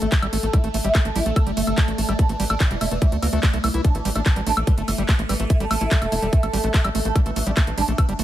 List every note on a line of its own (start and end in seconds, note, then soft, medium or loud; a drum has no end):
0.00 0.08 A1 medium
0.00 8.24 A3 medium
0.00 0.07 A3 medium
0.00 0.56 A4 medium
0.00 closed hi-hat medium
0.12 0.17 A3 medium
0.12 0.15 A3 medium
0.12 kick loud
0.12 clap loud
0.12 closed hi-hat medium
0.22 0.28 A1 medium
0.22 0.27 G3 loud
0.22 closed hi-hat medium
0.22 high woodblock medium
0.33 0.39 A1 loud
0.33 0.38 A3 medium
0.33 open hi-hat loud
0.43 0.49 A1 medium
0.43 0.49 A3 medium
0.43 0.46 A3 medium
0.43 closed hi-hat medium
0.53 0.58 G3 loud
0.53 0.59 E4 medium
0.53 3.87 D5 medium
0.53 kick loud
0.53 closed hi-hat medium
0.53 high woodblock soft
0.64 0.70 A1 medium
0.64 0.69 A3 medium
0.64 closed hi-hat medium
0.74 0.80 A1 loud
0.74 0.80 A3 medium
0.74 0.77 A3 medium
0.74 open hi-hat loud
0.84 0.90 A1 medium
0.84 0.89 G3 loud
0.84 0.90 E4 medium
0.84 closed hi-hat medium
0.95 1.00 A3 medium
0.95 kick loud
0.95 clap loud
0.95 closed hi-hat medium
0.95 high woodblock soft
1.05 1.11 A1 medium
1.05 1.08 A3 medium
1.05 1.11 A3 medium
1.05 closed hi-hat medium
1.15 1.21 A1 loud
1.15 1.20 G3 loud
1.15 1.21 E4 medium
1.15 open hi-hat loud
1.26 1.32 A#1 medium
1.26 1.31 A3 medium
1.26 closed hi-hat medium
1.36 1.39 A3 medium
1.36 1.42 A3 medium
1.36 kick loud
1.36 closed hi-hat medium
1.36 high woodblock medium
1.47 1.52 G1 medium
1.47 1.51 G3 loud
1.47 closed hi-hat medium
1.57 1.63 G1 loud
1.57 1.62 A3 medium
1.57 open hi-hat loud
1.67 1.73 G1 medium
1.67 1.73 A3 medium
1.67 1.70 A3 medium
1.67 closed hi-hat medium
1.67 high woodblock soft
1.78 1.82 G3 loud
1.78 1.83 A3 medium
1.78 kick loud
1.78 clap loud
1.78 closed hi-hat medium
1.88 1.94 A1 medium
1.88 1.93 A3 medium
1.88 closed hi-hat medium
1.98 2.04 A1 loud
1.98 2.04 A3 medium
1.98 2.01 A3 medium
1.98 open hi-hat loud
2.09 2.15 A1 loud
2.09 2.13 G3 loud
2.09 2.14 A3 medium
2.09 closed hi-hat medium
2.09 high woodblock soft
2.19 2.24 A3 medium
2.19 2.24 D4 loud
2.19 kick loud
2.19 closed hi-hat medium
2.29 2.35 A1 medium
2.29 2.35 E3 medium
2.29 2.32 A3 medium
2.29 closed hi-hat soft
2.40 2.46 A1 loud
2.40 2.45 E3 medium
2.40 2.44 G3 loud
2.40 open hi-hat loud
2.50 2.56 A1 medium
2.50 2.55 A3 medium
2.50 2.55 D4 loud
2.50 closed hi-hat medium
2.50 high woodblock medium
2.60 2.66 E3 medium
2.60 2.63 A3 medium
2.60 kick loud
2.60 clap loud
2.60 closed hi-hat medium
2.71 2.77 E1 medium
2.71 2.76 E3 medium
2.71 2.75 G3 loud
2.71 closed hi-hat soft
2.81 2.87 E1 loud
2.81 2.86 A3 medium
2.81 2.86 E4 loud
2.81 open hi-hat loud
2.81 high woodblock soft
2.91 2.97 E1 medium
2.91 2.97 E3 medium
2.91 2.94 A3 medium
2.91 closed hi-hat medium
3.02 3.07 E3 medium
3.02 3.07 G3 loud
3.02 kick loud
3.02 closed hi-hat medium
3.12 3.18 D2 medium
3.12 3.17 A3 medium
3.12 closed hi-hat soft
3.22 3.28 D2 loud
3.22 3.28 E3 medium
3.22 3.27 A#3 medium
3.22 open hi-hat loud
3.22 high woodblock soft
3.33 3.39 D2 loud
3.33 3.38 E3 medium
3.33 3.40 A3 loud
3.33 closed hi-hat medium
3.43 3.49 E3 medium
3.43 3.46 A3 loud
3.43 kick loud
3.43 clap loud
3.43 closed hi-hat medium
3.53 3.59 C2 medium
3.53 3.58 A3 loud
3.53 closed hi-hat medium
3.64 3.70 C2 loud
3.64 3.69 E3 medium
3.64 3.69 A3 medium
3.64 open hi-hat loud
3.64 high woodblock medium
3.74 3.80 C2 loud
3.74 3.80 E3 medium
3.74 3.81 E4 loud
3.74 closed hi-hat medium
3.84 3.89 A3 medium
3.84 3.90 D4 loud
3.84 7.18 A4 medium
3.84 kick loud
3.84 closed hi-hat medium
3.95 4.01 A1 medium
3.95 4.00 E3 medium
3.95 3.98 A3 medium
3.95 closed hi-hat medium
4.05 4.11 A1 medium
4.05 4.11 E3 medium
4.05 4.10 G3 loud
4.05 open hi-hat loud
4.15 4.21 A1 medium
4.15 4.20 A3 medium
4.15 4.21 D4 loud
4.15 closed hi-hat medium
4.15 high woodblock soft
4.26 4.31 E3 medium
4.26 4.29 A3 medium
4.26 kick loud
4.26 clap loud
4.26 closed hi-hat medium
4.36 4.42 A1 medium
4.36 4.42 E3 medium
4.36 4.41 G3 loud
4.36 closed hi-hat medium
4.46 4.53 A1 loud
4.46 4.51 A3 medium
4.46 4.52 D4 loud
4.46 open hi-hat loud
4.57 4.63 A#1 medium
4.57 4.62 E3 medium
4.57 4.60 A3 medium
4.57 closed hi-hat medium
4.57 high woodblock medium
4.67 4.73 E3 medium
4.67 4.72 G3 loud
4.67 kick loud
4.67 closed hi-hat medium
4.78 4.84 G1 medium
4.78 4.82 A3 medium
4.78 closed hi-hat medium
4.88 4.94 G1 loud
4.88 4.93 E3 medium
4.88 4.91 A3 medium
4.88 open hi-hat loud
4.88 high woodblock soft
4.98 5.04 G1 medium
4.98 5.04 E3 medium
4.98 5.03 G3 loud
4.98 closed hi-hat medium
5.09 5.14 E3 medium
5.09 5.13 A3 medium
5.09 kick loud
5.09 clap loud
5.09 closed hi-hat medium
5.19 5.25 A1 medium
5.19 5.22 A3 medium
5.19 closed hi-hat soft
5.29 5.35 A1 loud
5.29 5.35 E3 medium
5.29 5.34 G3 loud
5.29 open hi-hat loud
5.29 high woodblock soft
5.40 5.46 A1 medium
5.40 5.45 E3 medium
5.40 5.44 A3 medium
5.40 closed hi-hat medium
5.50 5.53 A3 medium
5.50 5.55 E4 loud
5.50 kick loud
5.50 closed hi-hat medium
5.60 5.66 A1 medium
5.60 5.65 G3 loud
5.60 5.66 A3 medium
5.60 closed hi-hat medium
5.71 5.77 A1 loud
5.71 5.76 A3 medium
5.71 open hi-hat loud
5.71 high woodblock medium
5.81 5.87 A1 medium
5.81 5.84 A3 medium
5.81 5.86 E4 medium
5.81 closed hi-hat medium
5.91 5.96 G3 loud
5.91 5.97 A3 medium
5.91 kick loud
5.91 clap loud
5.91 closed hi-hat medium
6.02 6.08 E1 medium
6.02 6.07 A3 medium
6.02 closed hi-hat medium
6.02 high woodblock soft
6.12 6.18 E1 loud
6.12 6.15 A3 medium
6.12 6.17 E4 loud
6.12 open hi-hat loud
6.22 6.28 E1 medium
6.22 6.27 G3 loud
6.22 6.28 A3 medium
6.22 closed hi-hat medium
6.33 6.38 A3 medium
6.33 kick loud
6.33 closed hi-hat medium
6.43 6.49 A1 medium
6.43 6.46 A3 medium
6.43 closed hi-hat medium
6.43 high woodblock soft
6.53 6.59 A1 loud
6.53 6.58 G3 loud
6.53 6.59 A3 medium
6.53 open hi-hat loud
6.64 6.70 A1 loud
6.64 6.69 A3 medium
6.64 closed hi-hat medium
6.74 6.80 A3 medium
6.74 6.77 A3 medium
6.74 kick loud
6.74 clap loud
6.74 closed hi-hat medium
6.84 6.90 A1 medium
6.84 6.89 G3 loud
6.84 closed hi-hat medium
6.84 high woodblock medium
6.95 7.01 A1 loud
6.95 7.00 A3 medium
6.95 open hi-hat loud
7.05 7.11 A1 medium
7.05 7.08 A3 medium
7.05 7.11 A3 medium
7.05 closed hi-hat medium
7.15 7.20 G3 loud
7.15 7.21 D4 loud
7.15 8.24 D4 medium
7.15 kick loud
7.15 closed hi-hat medium
7.15 high woodblock soft
7.26 7.32 A1 medium
7.26 7.31 E3 medium
7.26 7.31 A3 medium
7.26 closed hi-hat medium
7.36 7.42 A1 loud
7.36 7.42 E3 medium
7.36 7.39 A3 medium
7.36 open hi-hat loud
7.47 7.53 A1 medium
7.47 7.51 G3 loud
7.47 7.52 D4 medium
7.47 closed hi-hat medium
7.57 7.62 E3 medium
7.57 7.62 A3 medium
7.57 kick loud
7.57 clap loud
7.57 closed hi-hat medium
7.57 high woodblock soft
7.67 7.73 A1 medium
7.67 7.73 E3 medium
7.67 7.70 A3 medium
7.67 closed hi-hat medium
7.78 7.84 A1 loud
7.78 7.82 G3 loud
7.78 7.83 D4 loud
7.78 open hi-hat loud
7.88 7.94 A#1 medium
7.88 7.93 E3 medium
7.88 7.93 A3 medium
7.88 closed hi-hat medium
7.98 8.04 E3 medium
7.98 8.01 A3 medium
7.98 kick loud
7.98 closed hi-hat medium
7.98 high woodblock medium
8.09 8.15 G1 medium
8.09 8.13 G3 loud
8.09 closed hi-hat medium
8.19 8.24 G1 loud
8.19 8.24 E3 medium
8.19 8.24 A3 medium
8.19 open hi-hat loud